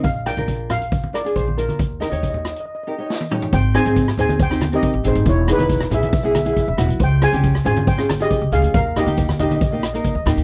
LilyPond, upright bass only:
\new Staff \with { instrumentName = "Upright bass" } { \clef bass \time 4/4 \key aes \major \tempo 4 = 138 bes,,8. bes,,2 r16 bes,,4 | ees,8. ees,4~ ees,16 r2 | aes,,8. aes,,8. ees,4.~ ees,16 aes,,16 aes,,16 aes,,16 | e,,8. e,,8. b,,4.~ b,,16 e,,16 e,,16 b,,16 |
des,8. des,8. aes,,4.~ aes,,16 des,16 des,16 d,16 | ees,8. ees,8. bes,,4.~ bes,,16 ees,16 ees,16 ees,16 | }